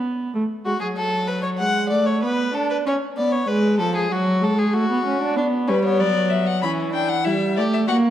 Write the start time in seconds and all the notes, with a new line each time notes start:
Already playing: B3
0.35 A3
0.65 G#3 F#4
0.81 F#3 G#4
0.97 A4
1.28 B4
1.43 C#5
1.59 G#3 F#5
1.90 A3 D5
2.06 C#5
2.23 B3 B4
2.54 D4 A4
2.70 B4
2.86 C#4 C#5
3.17 B3 D5
3.32 C#5
3.48 G#3 B4
3.79 F3 A4
3.96 G#4
4.12 F#3 F#4
4.42 G#3 A4
4.58 G#4
4.74 A3 F#4
4.90 B3
5.06 C#4
5.22 D4
5.36 B3 D4
5.68 G3 C#4 B4
5.84 B3 C#5
6.00 F#3 D5
6.30 E5
6.47 F#5
6.62 E3 C#4 B5
6.93 D4 G5
7.09 F#5
7.25 G3 E4 E5
7.56 A3 G4 D5
7.73 E5
7.88 A#3 F#4 F#5